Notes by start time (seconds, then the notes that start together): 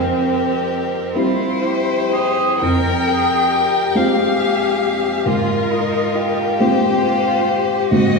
Already playing: F2 C4 G4 A#4
1.15 G3 C4 E4 F4 C5
1.63 E4 G4
2.13 G4 G#4
2.60 F2 A#4 G5
3.08 G#4
3.52 G4
3.95 G#3 C4 F4 G#4 F5
5.26 G#2 F4 A#4
5.71 D#4 F4
6.14 F4 G4
6.60 G#3 C4 F4 G4 C5
7.05 F4
7.48 G4
7.91 G#2 G#3 C4 F#4 D#5